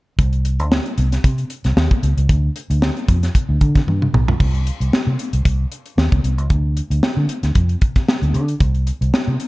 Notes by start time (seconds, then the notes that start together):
0.19 C2, kick, closed hi-hat
0.33 closed hi-hat
0.45 closed hi-hat
0.59 D2, closed hi-hat
0.72 snare
0.86 closed hi-hat
0.98 C2, closed hi-hat
1.12 snare, closed hi-hat
1.24 C3, kick, closed hi-hat
1.38 closed hi-hat
1.50 closed hi-hat
1.64 C2, snare, closed hi-hat
1.77 D#2, snare
1.91 kick, closed hi-hat
2.03 C#2, closed hi-hat
2.17 C#2, closed hi-hat
2.29 D2, kick, closed hi-hat
2.56 closed hi-hat
2.70 D2, closed hi-hat
2.82 snare
2.97 closed hi-hat
3.08 F2, kick, closed hi-hat
3.23 snare, closed hi-hat
3.35 kick, closed hi-hat
3.49 D2
3.61 D3, kick, closed hi-hat
3.75 kick, snare, closed hi-hat
3.87 G2, high tom
4.02 mid tom
4.13 B1, mid tom
4.28 floor tom
4.40 C2, kick, crash
4.54 closed hi-hat
4.67 closed hi-hat
4.80 C2, closed hi-hat
4.92 muted fingered electric bass stroke, snare
5.07 C3
5.19 closed hi-hat
5.33 C2, closed hi-hat
5.45 C2, kick, closed hi-hat
5.72 closed hi-hat
5.86 closed hi-hat
5.97 D#2, snare
6.12 C#2, kick, closed hi-hat
6.24 C2, closed hi-hat
6.38 C#2, closed hi-hat
6.50 D2, kick, closed hi-hat
6.77 closed hi-hat
6.90 D2, closed hi-hat
7.03 snare
7.17 D3
7.29 closed hi-hat
7.43 D2, snare, closed hi-hat
7.55 F2, kick, closed hi-hat
7.69 closed hi-hat
7.81 kick, closed hi-hat
7.96 kick, snare, closed hi-hat
8.09 snare
8.22 D2, closed hi-hat
8.34 D3, closed hi-hat
8.48 closed hi-hat
8.60 C2, kick, closed hi-hat
8.75 closed hi-hat
8.87 closed hi-hat
9.01 C2, closed hi-hat
9.14 snare
9.28 C3
9.40 closed hi-hat